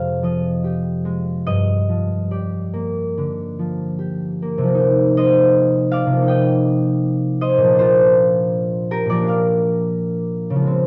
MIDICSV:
0, 0, Header, 1, 2, 480
1, 0, Start_track
1, 0, Key_signature, -3, "minor"
1, 0, Tempo, 809717
1, 871, Time_signature, 4, 2, 24, 8
1, 871, Tempo, 846262
1, 1831, Tempo, 818554
1, 2791, Tempo, 746269
1, 5191, Tempo, 729927
1, 6729, End_track
2, 0, Start_track
2, 0, Title_t, "Harp"
2, 0, Program_c, 0, 46
2, 0, Note_on_c, 0, 41, 73
2, 0, Note_on_c, 0, 48, 46
2, 0, Note_on_c, 0, 53, 47
2, 0, Note_on_c, 0, 56, 49
2, 0, Note_on_c, 0, 67, 60
2, 0, Note_on_c, 0, 75, 102
2, 0, Note_on_c, 0, 77, 71
2, 0, Note_on_c, 0, 80, 92
2, 128, Note_off_c, 0, 53, 0
2, 135, Note_off_c, 0, 75, 0
2, 135, Note_on_c, 0, 53, 48
2, 142, Note_on_c, 0, 75, 69
2, 372, Note_off_c, 0, 67, 0
2, 379, Note_on_c, 0, 67, 46
2, 613, Note_off_c, 0, 56, 0
2, 620, Note_on_c, 0, 56, 45
2, 860, Note_off_c, 0, 75, 0
2, 867, Note_on_c, 0, 75, 91
2, 872, Note_on_c, 0, 43, 67
2, 883, Note_off_c, 0, 48, 0
2, 889, Note_off_c, 0, 56, 0
2, 891, Note_off_c, 0, 80, 0
2, 892, Note_off_c, 0, 41, 0
2, 1102, Note_off_c, 0, 53, 0
2, 1108, Note_on_c, 0, 53, 43
2, 1343, Note_off_c, 0, 67, 0
2, 1348, Note_on_c, 0, 67, 49
2, 1349, Note_on_c, 0, 74, 54
2, 1589, Note_on_c, 0, 58, 50
2, 1839, Note_on_c, 0, 50, 42
2, 2075, Note_off_c, 0, 53, 0
2, 2082, Note_on_c, 0, 53, 42
2, 2168, Note_off_c, 0, 77, 0
2, 2308, Note_off_c, 0, 67, 0
2, 2315, Note_on_c, 0, 67, 45
2, 2563, Note_off_c, 0, 58, 0
2, 2570, Note_on_c, 0, 58, 51
2, 2662, Note_on_c, 0, 48, 72
2, 2687, Note_off_c, 0, 53, 0
2, 2694, Note_on_c, 0, 53, 58
2, 2714, Note_off_c, 0, 58, 0
2, 2721, Note_on_c, 0, 58, 54
2, 2758, Note_on_c, 0, 63, 58
2, 2811, Note_off_c, 0, 43, 0
2, 2815, Note_off_c, 0, 50, 0
2, 3024, Note_off_c, 0, 75, 0
2, 3032, Note_on_c, 0, 75, 91
2, 3040, Note_on_c, 0, 72, 64
2, 3510, Note_on_c, 0, 77, 99
2, 3512, Note_off_c, 0, 74, 0
2, 3520, Note_on_c, 0, 74, 72
2, 3597, Note_off_c, 0, 48, 0
2, 3605, Note_on_c, 0, 48, 59
2, 3633, Note_off_c, 0, 53, 0
2, 3641, Note_on_c, 0, 53, 48
2, 3664, Note_off_c, 0, 58, 0
2, 3672, Note_on_c, 0, 58, 42
2, 3701, Note_off_c, 0, 63, 0
2, 3708, Note_on_c, 0, 63, 48
2, 3743, Note_off_c, 0, 75, 0
2, 3743, Note_on_c, 0, 79, 83
2, 3751, Note_on_c, 0, 75, 74
2, 4463, Note_off_c, 0, 75, 0
2, 4466, Note_off_c, 0, 72, 0
2, 4470, Note_on_c, 0, 75, 95
2, 4474, Note_on_c, 0, 72, 74
2, 4575, Note_on_c, 0, 46, 73
2, 4600, Note_off_c, 0, 53, 0
2, 4608, Note_on_c, 0, 53, 55
2, 4635, Note_off_c, 0, 58, 0
2, 4643, Note_on_c, 0, 58, 56
2, 4661, Note_off_c, 0, 48, 0
2, 4677, Note_on_c, 0, 62, 55
2, 4706, Note_off_c, 0, 72, 0
2, 4712, Note_off_c, 0, 63, 0
2, 4714, Note_on_c, 0, 72, 96
2, 4722, Note_on_c, 0, 65, 77
2, 4730, Note_off_c, 0, 79, 0
2, 4732, Note_off_c, 0, 75, 0
2, 4734, Note_off_c, 0, 67, 0
2, 5439, Note_on_c, 0, 67, 69
2, 5442, Note_on_c, 0, 70, 92
2, 5531, Note_off_c, 0, 46, 0
2, 5539, Note_on_c, 0, 46, 51
2, 5556, Note_off_c, 0, 74, 0
2, 5564, Note_on_c, 0, 74, 92
2, 5565, Note_off_c, 0, 53, 0
2, 5569, Note_off_c, 0, 70, 0
2, 5573, Note_on_c, 0, 53, 49
2, 5577, Note_on_c, 0, 70, 62
2, 5601, Note_off_c, 0, 58, 0
2, 5609, Note_on_c, 0, 58, 45
2, 5639, Note_off_c, 0, 62, 0
2, 5647, Note_on_c, 0, 62, 46
2, 5673, Note_off_c, 0, 77, 0
2, 5681, Note_off_c, 0, 74, 0
2, 5681, Note_on_c, 0, 77, 81
2, 5689, Note_on_c, 0, 74, 67
2, 6488, Note_on_c, 0, 49, 69
2, 6516, Note_off_c, 0, 53, 0
2, 6524, Note_on_c, 0, 53, 58
2, 6565, Note_on_c, 0, 56, 58
2, 6582, Note_off_c, 0, 46, 0
2, 6596, Note_on_c, 0, 60, 55
2, 6617, Note_off_c, 0, 58, 0
2, 6636, Note_off_c, 0, 62, 0
2, 6655, Note_off_c, 0, 67, 0
2, 6657, Note_off_c, 0, 74, 0
2, 6662, Note_off_c, 0, 70, 0
2, 6729, Note_off_c, 0, 49, 0
2, 6729, Note_off_c, 0, 53, 0
2, 6729, Note_off_c, 0, 56, 0
2, 6729, Note_off_c, 0, 60, 0
2, 6729, Note_off_c, 0, 65, 0
2, 6729, Note_off_c, 0, 72, 0
2, 6729, Note_off_c, 0, 77, 0
2, 6729, End_track
0, 0, End_of_file